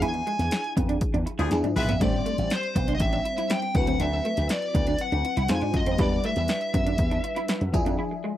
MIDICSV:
0, 0, Header, 1, 8, 480
1, 0, Start_track
1, 0, Tempo, 497925
1, 13, Time_signature, 4, 2, 24, 8
1, 8073, End_track
2, 0, Start_track
2, 0, Title_t, "Lead electric guitar"
2, 0, Program_c, 0, 29
2, 21, Note_on_c, 0, 80, 97
2, 700, Note_off_c, 0, 80, 0
2, 1707, Note_on_c, 0, 76, 88
2, 1942, Note_off_c, 0, 76, 0
2, 1946, Note_on_c, 0, 74, 90
2, 2436, Note_off_c, 0, 74, 0
2, 2438, Note_on_c, 0, 72, 86
2, 2812, Note_off_c, 0, 72, 0
2, 2840, Note_on_c, 0, 75, 68
2, 2901, Note_off_c, 0, 75, 0
2, 2905, Note_on_c, 0, 76, 90
2, 3390, Note_on_c, 0, 79, 102
2, 3395, Note_off_c, 0, 76, 0
2, 3624, Note_off_c, 0, 79, 0
2, 3628, Note_on_c, 0, 78, 99
2, 3865, Note_on_c, 0, 76, 99
2, 3869, Note_off_c, 0, 78, 0
2, 4308, Note_off_c, 0, 76, 0
2, 4350, Note_on_c, 0, 74, 87
2, 4832, Note_on_c, 0, 78, 100
2, 4838, Note_off_c, 0, 74, 0
2, 5272, Note_off_c, 0, 78, 0
2, 5309, Note_on_c, 0, 80, 113
2, 5550, Note_off_c, 0, 80, 0
2, 5556, Note_on_c, 0, 75, 101
2, 5770, Note_off_c, 0, 75, 0
2, 5800, Note_on_c, 0, 74, 98
2, 6032, Note_off_c, 0, 74, 0
2, 6036, Note_on_c, 0, 76, 96
2, 8073, Note_off_c, 0, 76, 0
2, 8073, End_track
3, 0, Start_track
3, 0, Title_t, "Horn section"
3, 0, Program_c, 1, 61
3, 1339, Note_on_c, 1, 62, 83
3, 1341, Note_on_c, 1, 53, 85
3, 1343, Note_on_c, 1, 68, 92
3, 1440, Note_off_c, 1, 62, 0
3, 1441, Note_off_c, 1, 53, 0
3, 1442, Note_off_c, 1, 68, 0
3, 1701, Note_on_c, 1, 56, 99
3, 1701, Note_on_c, 1, 71, 110
3, 1703, Note_on_c, 1, 65, 94
3, 1853, Note_off_c, 1, 56, 0
3, 1853, Note_off_c, 1, 71, 0
3, 1854, Note_off_c, 1, 65, 0
3, 8073, End_track
4, 0, Start_track
4, 0, Title_t, "Clean electric guitar"
4, 0, Program_c, 2, 27
4, 18, Note_on_c, 2, 64, 80
4, 89, Note_off_c, 2, 64, 0
4, 258, Note_on_c, 2, 56, 85
4, 330, Note_off_c, 2, 56, 0
4, 740, Note_on_c, 2, 59, 77
4, 811, Note_off_c, 2, 59, 0
4, 857, Note_on_c, 2, 62, 82
4, 930, Note_off_c, 2, 62, 0
4, 1097, Note_on_c, 2, 62, 73
4, 1170, Note_off_c, 2, 62, 0
4, 1339, Note_on_c, 2, 64, 85
4, 1411, Note_off_c, 2, 64, 0
4, 1580, Note_on_c, 2, 62, 80
4, 1652, Note_off_c, 2, 62, 0
4, 1819, Note_on_c, 2, 59, 77
4, 1891, Note_off_c, 2, 59, 0
4, 1939, Note_on_c, 2, 57, 82
4, 2011, Note_off_c, 2, 57, 0
4, 2177, Note_on_c, 2, 57, 78
4, 2249, Note_off_c, 2, 57, 0
4, 2657, Note_on_c, 2, 59, 74
4, 2730, Note_off_c, 2, 59, 0
4, 2776, Note_on_c, 2, 62, 80
4, 2849, Note_off_c, 2, 62, 0
4, 3015, Note_on_c, 2, 62, 78
4, 3088, Note_off_c, 2, 62, 0
4, 3257, Note_on_c, 2, 64, 75
4, 3330, Note_off_c, 2, 64, 0
4, 3375, Note_on_c, 2, 64, 82
4, 3448, Note_off_c, 2, 64, 0
4, 3736, Note_on_c, 2, 60, 74
4, 3809, Note_off_c, 2, 60, 0
4, 3856, Note_on_c, 2, 62, 77
4, 3929, Note_off_c, 2, 62, 0
4, 4098, Note_on_c, 2, 57, 83
4, 4171, Note_off_c, 2, 57, 0
4, 4579, Note_on_c, 2, 59, 82
4, 4651, Note_off_c, 2, 59, 0
4, 4699, Note_on_c, 2, 62, 87
4, 4771, Note_off_c, 2, 62, 0
4, 4939, Note_on_c, 2, 62, 78
4, 5011, Note_off_c, 2, 62, 0
4, 5179, Note_on_c, 2, 64, 83
4, 5251, Note_off_c, 2, 64, 0
4, 5417, Note_on_c, 2, 62, 82
4, 5490, Note_off_c, 2, 62, 0
4, 5657, Note_on_c, 2, 60, 75
4, 5730, Note_off_c, 2, 60, 0
4, 5777, Note_on_c, 2, 64, 83
4, 5849, Note_off_c, 2, 64, 0
4, 6020, Note_on_c, 2, 57, 79
4, 6091, Note_off_c, 2, 57, 0
4, 6497, Note_on_c, 2, 59, 75
4, 6570, Note_off_c, 2, 59, 0
4, 6618, Note_on_c, 2, 62, 85
4, 6690, Note_off_c, 2, 62, 0
4, 6858, Note_on_c, 2, 62, 81
4, 6930, Note_off_c, 2, 62, 0
4, 7099, Note_on_c, 2, 64, 80
4, 7171, Note_off_c, 2, 64, 0
4, 7219, Note_on_c, 2, 64, 83
4, 7291, Note_off_c, 2, 64, 0
4, 7582, Note_on_c, 2, 62, 77
4, 7653, Note_off_c, 2, 62, 0
4, 7700, Note_on_c, 2, 64, 83
4, 7771, Note_off_c, 2, 64, 0
4, 7944, Note_on_c, 2, 56, 84
4, 8015, Note_off_c, 2, 56, 0
4, 8073, End_track
5, 0, Start_track
5, 0, Title_t, "FM electric piano"
5, 0, Program_c, 3, 5
5, 0, Control_c, 3, 64, 127
5, 0, Note_on_c, 3, 53, 63
5, 0, Note_on_c, 3, 62, 60
5, 0, Note_on_c, 3, 64, 60
5, 0, Note_on_c, 3, 68, 77
5, 1417, Note_off_c, 3, 53, 0
5, 1420, Note_off_c, 3, 62, 0
5, 1426, Note_off_c, 3, 64, 0
5, 1429, Note_off_c, 3, 68, 0
5, 1451, Note_on_c, 3, 53, 74
5, 1457, Note_on_c, 3, 62, 72
5, 1458, Note_on_c, 3, 64, 72
5, 1463, Note_on_c, 3, 68, 80
5, 1470, Control_c, 3, 64, 0
5, 1637, Control_c, 3, 64, 127
5, 1925, Note_on_c, 3, 55, 66
5, 1930, Note_off_c, 3, 62, 0
5, 1933, Note_on_c, 3, 60, 64
5, 1934, Note_off_c, 3, 53, 0
5, 1937, Note_off_c, 3, 64, 0
5, 1940, Note_off_c, 3, 68, 0
5, 1941, Note_on_c, 3, 62, 65
5, 1948, Note_on_c, 3, 72, 76
5, 1949, Control_c, 3, 64, 0
5, 2130, Control_c, 3, 64, 127
5, 3577, Note_off_c, 3, 55, 0
5, 3581, Note_off_c, 3, 60, 0
5, 3586, Note_off_c, 3, 62, 0
5, 3589, Note_off_c, 3, 72, 0
5, 3607, Note_on_c, 3, 52, 53
5, 3613, Note_on_c, 3, 60, 60
5, 3622, Note_on_c, 3, 64, 57
5, 3631, Control_c, 3, 64, 0
5, 3632, Note_on_c, 3, 71, 74
5, 3665, Note_on_c, 3, 54, 66
5, 3670, Note_off_c, 3, 52, 0
5, 3770, Control_c, 3, 64, 127
5, 5261, Note_off_c, 3, 60, 0
5, 5266, Note_off_c, 3, 64, 0
5, 5271, Note_off_c, 3, 71, 0
5, 5288, Note_off_c, 3, 54, 0
5, 5289, Note_on_c, 3, 56, 63
5, 5293, Note_on_c, 3, 63, 61
5, 5295, Note_on_c, 3, 65, 61
5, 5299, Note_on_c, 3, 72, 72
5, 5308, Control_c, 3, 64, 0
5, 5468, Control_c, 3, 64, 127
5, 5761, Note_on_c, 3, 55, 70
5, 5767, Note_on_c, 3, 62, 67
5, 5773, Note_off_c, 3, 56, 0
5, 5775, Note_off_c, 3, 63, 0
5, 5775, Note_on_c, 3, 64, 62
5, 5776, Note_off_c, 3, 65, 0
5, 5778, Note_off_c, 3, 72, 0
5, 5784, Note_on_c, 3, 71, 80
5, 5787, Control_c, 3, 64, 0
5, 5943, Control_c, 3, 64, 127
5, 7415, Note_off_c, 3, 55, 0
5, 7418, Note_off_c, 3, 62, 0
5, 7422, Note_off_c, 3, 64, 0
5, 7426, Note_off_c, 3, 71, 0
5, 7447, Note_on_c, 3, 53, 82
5, 7456, Note_on_c, 3, 62, 79
5, 7463, Note_on_c, 3, 64, 74
5, 7467, Control_c, 3, 64, 0
5, 7470, Note_on_c, 3, 68, 92
5, 7630, Control_c, 3, 64, 127
5, 8073, Note_off_c, 3, 53, 0
5, 8073, Note_off_c, 3, 62, 0
5, 8073, Note_off_c, 3, 64, 0
5, 8073, Note_off_c, 3, 68, 0
5, 8073, End_track
6, 0, Start_track
6, 0, Title_t, "Slap bass"
6, 0, Program_c, 4, 36
6, 17, Note_on_c, 4, 40, 98
6, 199, Note_off_c, 4, 40, 0
6, 376, Note_on_c, 4, 40, 91
6, 467, Note_off_c, 4, 40, 0
6, 739, Note_on_c, 4, 41, 98
6, 921, Note_off_c, 4, 41, 0
6, 1098, Note_on_c, 4, 40, 90
6, 1189, Note_off_c, 4, 40, 0
6, 1339, Note_on_c, 4, 38, 82
6, 1430, Note_off_c, 4, 38, 0
6, 1459, Note_on_c, 4, 40, 107
6, 1550, Note_off_c, 4, 40, 0
6, 1578, Note_on_c, 4, 44, 84
6, 1669, Note_off_c, 4, 44, 0
6, 1698, Note_on_c, 4, 35, 81
6, 1821, Note_off_c, 4, 35, 0
6, 1821, Note_on_c, 4, 34, 91
6, 1911, Note_off_c, 4, 34, 0
6, 1938, Note_on_c, 4, 33, 102
6, 2121, Note_off_c, 4, 33, 0
6, 2297, Note_on_c, 4, 33, 104
6, 2389, Note_off_c, 4, 33, 0
6, 2656, Note_on_c, 4, 35, 95
6, 2840, Note_off_c, 4, 35, 0
6, 2893, Note_on_c, 4, 33, 105
6, 3078, Note_off_c, 4, 33, 0
6, 3613, Note_on_c, 4, 38, 94
6, 3798, Note_off_c, 4, 38, 0
6, 3854, Note_on_c, 4, 38, 94
6, 4038, Note_off_c, 4, 38, 0
6, 4218, Note_on_c, 4, 38, 94
6, 4309, Note_off_c, 4, 38, 0
6, 4574, Note_on_c, 4, 38, 95
6, 4758, Note_off_c, 4, 38, 0
6, 4936, Note_on_c, 4, 38, 87
6, 5028, Note_off_c, 4, 38, 0
6, 5175, Note_on_c, 4, 36, 82
6, 5268, Note_off_c, 4, 36, 0
6, 5297, Note_on_c, 4, 41, 102
6, 5389, Note_off_c, 4, 41, 0
6, 5417, Note_on_c, 4, 44, 83
6, 5508, Note_off_c, 4, 44, 0
6, 5530, Note_on_c, 4, 42, 87
6, 5624, Note_off_c, 4, 42, 0
6, 5657, Note_on_c, 4, 41, 92
6, 5748, Note_off_c, 4, 41, 0
6, 5773, Note_on_c, 4, 40, 105
6, 5958, Note_off_c, 4, 40, 0
6, 6136, Note_on_c, 4, 40, 98
6, 6228, Note_off_c, 4, 40, 0
6, 6497, Note_on_c, 4, 42, 87
6, 6680, Note_off_c, 4, 42, 0
6, 6735, Note_on_c, 4, 40, 104
6, 6919, Note_off_c, 4, 40, 0
6, 7338, Note_on_c, 4, 42, 91
6, 7429, Note_off_c, 4, 42, 0
6, 7458, Note_on_c, 4, 40, 101
6, 7549, Note_off_c, 4, 40, 0
6, 7575, Note_on_c, 4, 41, 99
6, 7667, Note_off_c, 4, 41, 0
6, 8073, End_track
7, 0, Start_track
7, 0, Title_t, "Muted clean electric guitar strokes"
7, 138, Note_on_c, 9, 29, 43
7, 235, Note_off_c, 9, 29, 0
7, 500, Note_on_c, 9, 29, 42
7, 597, Note_off_c, 9, 29, 0
7, 1218, Note_on_c, 9, 29, 44
7, 1314, Note_off_c, 9, 29, 0
7, 1700, Note_on_c, 9, 29, 44
7, 1797, Note_off_c, 9, 29, 0
7, 2057, Note_on_c, 9, 29, 43
7, 2154, Note_off_c, 9, 29, 0
7, 2418, Note_on_c, 9, 29, 42
7, 2514, Note_off_c, 9, 29, 0
7, 3134, Note_on_c, 9, 29, 44
7, 3231, Note_off_c, 9, 29, 0
7, 3494, Note_on_c, 9, 29, 46
7, 3591, Note_off_c, 9, 29, 0
7, 3977, Note_on_c, 9, 29, 44
7, 4073, Note_off_c, 9, 29, 0
7, 4335, Note_on_c, 9, 29, 43
7, 4431, Note_off_c, 9, 29, 0
7, 5060, Note_on_c, 9, 29, 44
7, 5156, Note_off_c, 9, 29, 0
7, 5537, Note_on_c, 9, 29, 46
7, 5634, Note_off_c, 9, 29, 0
7, 5899, Note_on_c, 9, 29, 49
7, 5996, Note_off_c, 9, 29, 0
7, 6257, Note_on_c, 9, 29, 44
7, 6353, Note_off_c, 9, 29, 0
7, 6979, Note_on_c, 9, 29, 46
7, 7075, Note_off_c, 9, 29, 0
7, 7340, Note_on_c, 9, 29, 49
7, 7436, Note_off_c, 9, 29, 0
7, 7822, Note_on_c, 9, 29, 45
7, 7918, Note_off_c, 9, 29, 0
7, 8073, End_track
8, 0, Start_track
8, 0, Title_t, "Drums"
8, 19, Note_on_c, 9, 42, 89
8, 116, Note_off_c, 9, 42, 0
8, 133, Note_on_c, 9, 42, 35
8, 230, Note_off_c, 9, 42, 0
8, 261, Note_on_c, 9, 42, 61
8, 358, Note_off_c, 9, 42, 0
8, 380, Note_on_c, 9, 42, 59
8, 385, Note_on_c, 9, 38, 32
8, 476, Note_off_c, 9, 42, 0
8, 481, Note_off_c, 9, 38, 0
8, 494, Note_on_c, 9, 42, 108
8, 504, Note_on_c, 9, 38, 113
8, 591, Note_off_c, 9, 42, 0
8, 600, Note_off_c, 9, 38, 0
8, 619, Note_on_c, 9, 42, 35
8, 715, Note_off_c, 9, 42, 0
8, 739, Note_on_c, 9, 36, 92
8, 746, Note_on_c, 9, 42, 86
8, 835, Note_off_c, 9, 36, 0
8, 842, Note_off_c, 9, 42, 0
8, 860, Note_on_c, 9, 42, 57
8, 956, Note_off_c, 9, 42, 0
8, 974, Note_on_c, 9, 42, 93
8, 977, Note_on_c, 9, 36, 92
8, 1071, Note_off_c, 9, 42, 0
8, 1073, Note_off_c, 9, 36, 0
8, 1102, Note_on_c, 9, 42, 36
8, 1198, Note_off_c, 9, 42, 0
8, 1222, Note_on_c, 9, 42, 72
8, 1319, Note_off_c, 9, 42, 0
8, 1341, Note_on_c, 9, 38, 36
8, 1341, Note_on_c, 9, 42, 56
8, 1437, Note_off_c, 9, 38, 0
8, 1437, Note_off_c, 9, 42, 0
8, 1455, Note_on_c, 9, 42, 96
8, 1460, Note_on_c, 9, 38, 58
8, 1551, Note_off_c, 9, 42, 0
8, 1557, Note_off_c, 9, 38, 0
8, 1580, Note_on_c, 9, 42, 37
8, 1580, Note_on_c, 9, 48, 69
8, 1676, Note_off_c, 9, 42, 0
8, 1676, Note_off_c, 9, 48, 0
8, 1698, Note_on_c, 9, 45, 89
8, 1700, Note_on_c, 9, 46, 78
8, 1794, Note_off_c, 9, 45, 0
8, 1797, Note_off_c, 9, 46, 0
8, 1818, Note_on_c, 9, 43, 94
8, 1819, Note_on_c, 9, 42, 53
8, 1914, Note_off_c, 9, 43, 0
8, 1915, Note_off_c, 9, 42, 0
8, 1937, Note_on_c, 9, 36, 118
8, 1938, Note_on_c, 9, 42, 93
8, 2033, Note_off_c, 9, 36, 0
8, 2035, Note_off_c, 9, 42, 0
8, 2180, Note_on_c, 9, 42, 65
8, 2277, Note_off_c, 9, 42, 0
8, 2297, Note_on_c, 9, 42, 62
8, 2302, Note_on_c, 9, 38, 32
8, 2393, Note_off_c, 9, 42, 0
8, 2398, Note_off_c, 9, 38, 0
8, 2413, Note_on_c, 9, 42, 101
8, 2423, Note_on_c, 9, 38, 109
8, 2509, Note_off_c, 9, 42, 0
8, 2519, Note_off_c, 9, 38, 0
8, 2537, Note_on_c, 9, 42, 36
8, 2633, Note_off_c, 9, 42, 0
8, 2656, Note_on_c, 9, 36, 95
8, 2660, Note_on_c, 9, 42, 83
8, 2753, Note_off_c, 9, 36, 0
8, 2757, Note_off_c, 9, 42, 0
8, 2776, Note_on_c, 9, 42, 58
8, 2872, Note_off_c, 9, 42, 0
8, 2888, Note_on_c, 9, 42, 101
8, 2894, Note_on_c, 9, 36, 90
8, 2985, Note_off_c, 9, 42, 0
8, 2990, Note_off_c, 9, 36, 0
8, 3014, Note_on_c, 9, 42, 34
8, 3111, Note_off_c, 9, 42, 0
8, 3137, Note_on_c, 9, 42, 70
8, 3234, Note_off_c, 9, 42, 0
8, 3258, Note_on_c, 9, 38, 36
8, 3258, Note_on_c, 9, 42, 52
8, 3354, Note_off_c, 9, 38, 0
8, 3354, Note_off_c, 9, 42, 0
8, 3372, Note_on_c, 9, 42, 97
8, 3379, Note_on_c, 9, 38, 108
8, 3468, Note_off_c, 9, 42, 0
8, 3475, Note_off_c, 9, 38, 0
8, 3492, Note_on_c, 9, 42, 38
8, 3589, Note_off_c, 9, 42, 0
8, 3612, Note_on_c, 9, 42, 79
8, 3613, Note_on_c, 9, 36, 107
8, 3709, Note_off_c, 9, 36, 0
8, 3709, Note_off_c, 9, 42, 0
8, 3733, Note_on_c, 9, 42, 55
8, 3829, Note_off_c, 9, 42, 0
8, 3854, Note_on_c, 9, 42, 91
8, 3950, Note_off_c, 9, 42, 0
8, 4098, Note_on_c, 9, 42, 60
8, 4194, Note_off_c, 9, 42, 0
8, 4213, Note_on_c, 9, 42, 64
8, 4218, Note_on_c, 9, 38, 36
8, 4309, Note_off_c, 9, 42, 0
8, 4314, Note_off_c, 9, 38, 0
8, 4330, Note_on_c, 9, 42, 104
8, 4340, Note_on_c, 9, 38, 117
8, 4426, Note_off_c, 9, 42, 0
8, 4436, Note_off_c, 9, 38, 0
8, 4456, Note_on_c, 9, 42, 34
8, 4552, Note_off_c, 9, 42, 0
8, 4575, Note_on_c, 9, 36, 91
8, 4577, Note_on_c, 9, 42, 84
8, 4671, Note_off_c, 9, 36, 0
8, 4674, Note_off_c, 9, 42, 0
8, 4692, Note_on_c, 9, 42, 56
8, 4788, Note_off_c, 9, 42, 0
8, 4806, Note_on_c, 9, 42, 98
8, 4902, Note_off_c, 9, 42, 0
8, 4937, Note_on_c, 9, 42, 35
8, 5033, Note_off_c, 9, 42, 0
8, 5058, Note_on_c, 9, 42, 71
8, 5154, Note_off_c, 9, 42, 0
8, 5176, Note_on_c, 9, 38, 37
8, 5176, Note_on_c, 9, 42, 57
8, 5272, Note_off_c, 9, 38, 0
8, 5272, Note_off_c, 9, 42, 0
8, 5287, Note_on_c, 9, 42, 100
8, 5294, Note_on_c, 9, 38, 102
8, 5384, Note_off_c, 9, 42, 0
8, 5391, Note_off_c, 9, 38, 0
8, 5411, Note_on_c, 9, 42, 39
8, 5508, Note_off_c, 9, 42, 0
8, 5530, Note_on_c, 9, 36, 90
8, 5531, Note_on_c, 9, 42, 74
8, 5627, Note_off_c, 9, 36, 0
8, 5627, Note_off_c, 9, 42, 0
8, 5653, Note_on_c, 9, 42, 54
8, 5749, Note_off_c, 9, 42, 0
8, 5769, Note_on_c, 9, 42, 92
8, 5773, Note_on_c, 9, 36, 117
8, 5866, Note_off_c, 9, 42, 0
8, 5869, Note_off_c, 9, 36, 0
8, 6012, Note_on_c, 9, 42, 65
8, 6109, Note_off_c, 9, 42, 0
8, 6130, Note_on_c, 9, 42, 60
8, 6135, Note_on_c, 9, 38, 37
8, 6226, Note_off_c, 9, 42, 0
8, 6231, Note_off_c, 9, 38, 0
8, 6247, Note_on_c, 9, 42, 104
8, 6257, Note_on_c, 9, 38, 110
8, 6344, Note_off_c, 9, 42, 0
8, 6354, Note_off_c, 9, 38, 0
8, 6372, Note_on_c, 9, 42, 37
8, 6468, Note_off_c, 9, 42, 0
8, 6496, Note_on_c, 9, 36, 94
8, 6499, Note_on_c, 9, 42, 92
8, 6593, Note_off_c, 9, 36, 0
8, 6595, Note_off_c, 9, 42, 0
8, 6619, Note_on_c, 9, 42, 59
8, 6715, Note_off_c, 9, 42, 0
8, 6729, Note_on_c, 9, 42, 102
8, 6735, Note_on_c, 9, 36, 86
8, 6826, Note_off_c, 9, 42, 0
8, 6831, Note_off_c, 9, 36, 0
8, 6858, Note_on_c, 9, 42, 34
8, 6954, Note_off_c, 9, 42, 0
8, 6978, Note_on_c, 9, 42, 74
8, 7075, Note_off_c, 9, 42, 0
8, 7099, Note_on_c, 9, 38, 37
8, 7099, Note_on_c, 9, 42, 55
8, 7195, Note_off_c, 9, 38, 0
8, 7195, Note_off_c, 9, 42, 0
8, 7214, Note_on_c, 9, 42, 100
8, 7221, Note_on_c, 9, 38, 114
8, 7311, Note_off_c, 9, 42, 0
8, 7318, Note_off_c, 9, 38, 0
8, 7337, Note_on_c, 9, 42, 38
8, 7434, Note_off_c, 9, 42, 0
8, 7457, Note_on_c, 9, 36, 106
8, 7461, Note_on_c, 9, 42, 77
8, 7554, Note_off_c, 9, 36, 0
8, 7558, Note_off_c, 9, 42, 0
8, 7580, Note_on_c, 9, 42, 53
8, 7676, Note_off_c, 9, 42, 0
8, 8073, End_track
0, 0, End_of_file